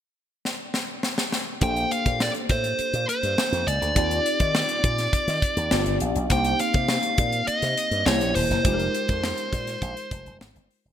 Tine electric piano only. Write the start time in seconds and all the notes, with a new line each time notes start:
1.61 A#3 D4 G4 A4 C5
3.95 C4 D#4 F4 G4 D5
5.71 B3 D4 F4 G4 D5
6.30 A#3 C4 D#4 G4 C5
8.06 A#3 C#4 E4 G4 C5
8.64 G#3 D#4 F4 G4 G#4
8.73 A#4